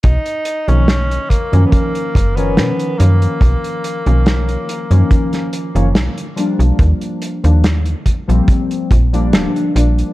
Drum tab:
HH |xxxxxxxxxxxxxxxx|xxxxxxxxxxxxxxxx|xxxxxxxxxxxxxxxx|
SD |----o-------o---|----o----o--o---|----o-------o---|
BD |o-----o-o-o-----|o-------o-------|o-----o-o-o-----|